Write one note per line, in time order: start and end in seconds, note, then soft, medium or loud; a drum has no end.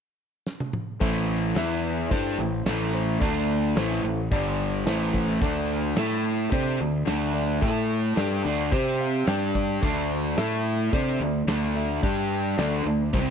0.47 snare medium
0.60 high tom medium
0.73 mid tom medium
1.00 1.52 A1 medium
1.00 1.55 A2 loud
1.00 1.55 E3 loud
1.00 1.55 A3 loud
1.00 1.56 A4 medium
1.00 1.56 C5 medium
1.00 1.56 E5 medium
1.00 kick loud
1.00 open hi-hat medium
1.56 2.07 E2 medium
1.56 2.10 E3 medium
1.56 2.11 B3 medium
1.56 2.00 E4 medium
1.56 2.11 E4 loud
1.56 2.00 B4 medium
1.56 2.01 E5 loud
1.56 snare medium
1.56 open hi-hat medium
2.09 2.37 G2 medium
2.09 2.38 G3 medium
2.09 2.38 D4 medium
2.09 2.76 E4 medium
2.09 2.38 G4 loud
2.09 2.77 A4 medium
2.09 2.77 C5 medium
2.09 kick loud
2.09 open hi-hat medium
2.38 2.64 A1 medium
2.38 2.61 A2 medium
2.38 2.61 E3 medium
2.66 3.17 A1 loud
2.66 3.21 A2 medium
2.66 3.21 E3 medium
2.66 3.20 A3 loud
2.66 snare loud
2.66 open hi-hat medium
2.93 3.15 E4 medium
2.93 3.16 A4 medium
2.93 3.16 C5 medium
3.19 3.73 D2 loud
3.19 3.75 D3 medium
3.19 3.76 A3 loud
3.19 3.75 D4 medium
3.19 3.76 D4 loud
3.19 3.76 A4 medium
3.19 3.76 D5 medium
3.19 kick loud
3.19 open hi-hat medium
3.76 4.02 A1 medium
3.76 4.03 A2 medium
3.76 4.03 E3 loud
3.76 4.03 A3 medium
3.76 4.20 E4 medium
3.76 4.21 A4 medium
3.76 4.21 C5 loud
3.76 snare loud
3.76 open hi-hat soft
3.91 snare soft
4.04 4.29 A1 medium
4.04 4.26 A2 medium
4.04 4.26 E3 medium
4.31 4.83 G1 medium
4.31 4.86 G2 medium
4.31 4.86 D3 medium
4.31 4.86 G3 loud
4.31 4.86 D4 medium
4.31 4.86 G4 medium
4.31 4.87 D5 medium
4.31 kick loud
4.31 open hi-hat medium
4.85 5.38 A1 medium
4.85 5.41 A2 medium
4.85 5.41 E3 loud
4.85 5.41 A3 loud
4.85 5.08 E4 medium
4.85 5.08 A4 medium
4.85 5.09 C5 loud
4.85 snare loud
4.85 open hi-hat soft
5.13 5.35 E4 medium
5.13 5.36 A4 medium
5.13 5.37 C5 medium
5.13 kick medium
5.41 5.93 D2 loud
5.41 5.96 D3 loud
5.41 5.95 A3 medium
5.41 5.97 D4 medium
5.41 5.96 D4 loud
5.41 5.96 A4 medium
5.41 5.98 D5 medium
5.41 kick loud
5.41 open hi-hat medium
5.96 6.48 A2 medium
5.96 6.51 A3 medium
5.96 6.51 E4 medium
5.96 6.41 E4 medium
5.96 6.51 A4 medium
5.96 6.41 A4 medium
5.96 6.42 E5 medium
5.96 snare loud
5.96 open hi-hat medium
6.11 snare soft
6.51 6.78 C3 medium
6.51 6.78 C4 medium
6.51 7.18 D4 medium
6.51 6.78 G4 loud
6.51 7.19 A4 medium
6.51 6.79 C5 loud
6.51 7.19 D5 loud
6.51 kick loud
6.51 open hi-hat medium
6.78 7.06 D2 medium
6.78 7.01 D3 medium
6.78 7.01 A3 medium
7.05 7.58 D2 medium
7.05 7.60 D3 medium
7.05 7.60 A3 medium
7.05 7.61 D4 loud
7.05 snare loud
7.05 open hi-hat medium
7.33 7.56 D4 medium
7.33 7.56 A4 medium
7.33 7.57 D5 medium
7.61 8.13 A2 medium
7.61 8.16 A3 medium
7.61 8.17 E4 medium
7.61 8.16 E4 loud
7.61 8.16 A4 medium
7.61 8.17 E5 medium
7.61 kick loud
7.61 open hi-hat medium
8.17 8.43 G2 medium
8.17 8.43 G3 medium
8.17 8.61 D4 medium
8.17 8.43 D4 loud
8.17 8.44 G4 loud
8.17 8.61 A4 medium
8.17 8.62 D5 medium
8.17 snare medium
8.17 open hi-hat medium
8.31 snare soft
8.44 8.70 D2 medium
8.44 8.71 D3 medium
8.44 8.71 A3 medium
8.44 8.71 D4 medium
8.71 9.24 C3 medium
8.71 9.27 C4 medium
8.71 9.26 C4 medium
8.71 9.27 G4 medium
8.71 9.27 G4 loud
8.71 9.27 C5 loud
8.71 9.28 C5 medium
8.71 kick loud
8.71 open hi-hat medium
9.01 9.26 F5 medium
9.27 9.78 G2 medium
9.27 9.82 G3 loud
9.27 9.82 D4 medium
9.27 9.50 D4 medium
9.27 9.82 G4 loud
9.27 9.50 G4 medium
9.27 9.50 D5 loud
9.27 9.53 G5 medium
9.27 snare loud
9.27 open hi-hat medium
9.54 9.76 D4 medium
9.54 9.77 G4 medium
9.54 9.77 D5 medium
9.54 9.80 A5 medium
9.54 kick medium
9.81 10.34 D2 medium
9.81 10.36 D3 medium
9.81 10.36 A3 medium
9.81 10.37 D4 medium
9.81 10.37 D4 loud
9.81 10.35 A4 medium
9.81 10.38 D5 medium
9.81 kick loud
9.81 open hi-hat medium
10.36 10.89 A2 medium
10.36 10.92 A3 medium
10.36 10.81 E4 medium
10.36 10.92 E4 medium
10.36 10.81 A4 medium
10.36 10.92 A4 loud
10.36 10.82 E5 medium
10.36 snare loud
10.36 open hi-hat medium
10.93 11.19 C3 medium
10.93 11.19 C4 medium
10.93 11.59 D4 medium
10.93 11.20 G4 loud
10.93 11.59 A4 medium
10.93 11.20 C5 loud
10.93 11.60 D5 medium
10.93 kick loud
10.93 open hi-hat medium
11.20 11.46 D2 medium
11.20 11.42 D3 medium
11.20 11.43 A3 medium
11.47 11.99 D2 medium
11.47 12.02 D3 medium
11.47 12.02 A3 loud
11.47 12.02 D4 loud
11.47 snare loud
11.47 open hi-hat medium
11.74 11.97 D4 medium
11.74 11.98 A4 medium
11.74 11.98 E5 medium
12.03 12.55 G2 loud
12.03 12.58 G3 medium
12.03 12.57 D4 medium
12.03 12.58 D4 medium
12.03 12.58 G4 loud
12.03 12.59 G4 medium
12.03 12.58 D5 medium
12.03 kick loud
12.03 open hi-hat medium
12.58 12.84 D2 medium
12.58 12.84 D3 medium
12.58 12.85 A3 loud
12.58 13.02 D4 medium
12.58 12.85 D4 loud
12.58 13.03 A4 medium
12.58 13.03 D5 loud
12.58 snare loud
12.58 open hi-hat medium
12.85 13.12 D2 medium
12.85 13.08 D3 medium
12.85 13.08 A3 medium
13.13 13.30 C2 loud
13.13 13.30 C3 medium
13.13 13.30 G3 loud
13.13 13.30 C4 medium
13.13 13.30 C4 loud
13.13 13.30 G4 medium
13.13 13.30 C5 loud
13.13 kick loud
13.13 open hi-hat medium